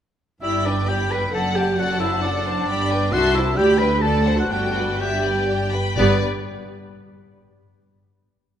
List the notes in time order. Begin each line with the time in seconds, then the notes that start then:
0.41 G1 G2 E4 G4 D5 E5 B5
0.65 D4 B4 D5 G5
0.87 G4 D5 G5 B5
1.11 B4 G5 B5
1.33 F#1 F#2 A4 D5 F#5 A5
1.56 G4 D5 F#5 G5 A5
1.78 F#4 A4 D5 F#5
2.00 E4 C5 E5 F#5 A5
2.15 E4
2.22 D4 A4 D5 F#5
2.46 C5 F#5 A5
2.68 G1 G2 G4 D5 B5
2.90 B4 G5
3.12 C2 F#4 A4 E5 F#5 C6
3.35 E4 C5 E5 A5
3.57 D2 G4 D5 G5 B5
3.79 B4 G5 B5
4.02 A4 D5 A5
4.25 C5 F#5
4.39 F#4 F#5
4.50 G1 G2 F#4 G4 D5 F#5 G5
4.75 B4 D5 G5
5.00 G4 D5 E5 G5
5.24 B4 D5 G5
5.48 G4 D5 G5
5.73 B4 G5 B5
5.97 G1 G2 B3 G4 B4 D5